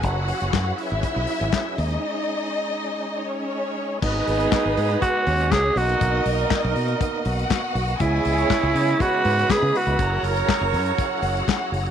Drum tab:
CC |----------------|----------------|x---------------|----------------|
HH |x-oxx-oxx-oxx-ox|----------------|--oxx-oxx-oxx-ox|x-oxx-oxx-oxx-ox|
CP |----x-------x---|----------------|----x-------x---|----x-------x---|
SD |----o-------o---|----------------|----o-------o---|----o-------o---|
BD |o---o---o---o---|----------------|o---o---o---o---|o---o---o---o---|

CC |----------------|----------------|
HH |x-oxx-oxx-oxx-ox|x-oxx-oxx-oxx-ox|
CP |----x-------x---|----x-------x---|
SD |----o-------o---|----o-------o---|
BD |o---o---o---o---|o---o---o---o---|